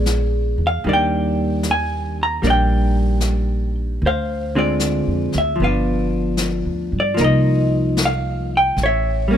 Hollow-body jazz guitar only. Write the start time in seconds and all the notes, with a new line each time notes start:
Already playing: G#3 B3 G#4 D5
0.67 F5
0.84 D#3 G3 A#3
0.89 D4 D5
0.93 G5
1.71 G#5
2.23 A#5
2.42 G3 A#3 D4
2.47 D5 G5
4.06 C5 F5
4.55 D3 G#3 C4 F4 D5
5.38 E5
5.56 F3
5.62 B3 B4 F5
5.66 D4
7.00 D5
7.14 F3 A#3
7.20 D#4 A#4
7.24 D#5
8.05 F5
8.57 G5
8.83 C#5 E5
9.28 G3 A#3
9.33 C#4